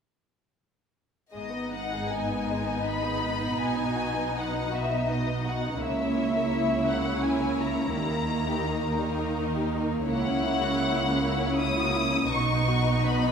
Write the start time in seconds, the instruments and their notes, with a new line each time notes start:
1.33 double bass section G#1, cello section G#2, violin section G#3 D#5, viola section B3 D#4
1.51 violin section B3
1.72 violin section D#4 F#5
1.92 violin section G#4
2.10 violin section D#4 G#5
2.30 violin section B3
2.49 violin section G#3
2.67 violin section B3
2.84 violin section D#4 B5
3.05 violin section G#4
3.22 violin section D#4
3.41 violin section B3
3.60 double bass section B1, cello section B2, violin section B3 G#5
3.78 violin section D#4
3.97 violin section F#4
4.16 violin section D#4
4.34 violin section B3 F#5
4.53 violin section D#4
4.71 violin section F#4 E5
4.90 violin section D#4
5.09 violin section B3 D#5
5.26 violin section D#4
5.46 violin section F#4 F#5
5.63 violin section D#4
5.80 double bass section C#2, cello section C#3, violin section A#3 C#5 E5, viola section A#3 E4
6.00 violin section C#4
6.19 violin section E4
6.37 violin section A#4
6.54 violin section E4
6.72 violin section C#4
6.88 violin section A#3 F#5
7.06 violin section C#4
7.23 violin section E4 G#5
7.40 violin section A#4
7.59 violin section E4 A#5
7.76 violin section C#4
7.93 double bass section D#2, cello section D#3, violin section G3 A#4
8.12 violin section A#3
8.31 violin section D#4
8.48 violin section G4
8.66 violin section D#4, viola section D#4
8.83 violin section A#3
8.99 violin section G3
9.19 violin section A#3
9.37 violin section D#4
9.56 violin section G4
9.74 violin section D#4
9.93 violin section A#3
10.08 double bass section C#2, cello section C#3, viola section A#3 E4, violin section A#3 C#5 F#5
10.26 violin section C#4
10.44 violin section E4
10.62 violin section F#4
10.80 violin section E4
10.99 violin section C#4
11.20 violin section A#3
11.39 violin section C#4
11.59 violin section E4 D#6
11.78 violin section F#4
11.97 violin section E4
12.14 violin section C#4
12.32 double bass section B1, cello section B2, viola section B3 D#4, violin section B3 D#5 C#6
12.50 violin section D#4
12.67 violin section F#4
12.86 violin section D#4
13.05 violin section B3 B5
13.24 violin section D#4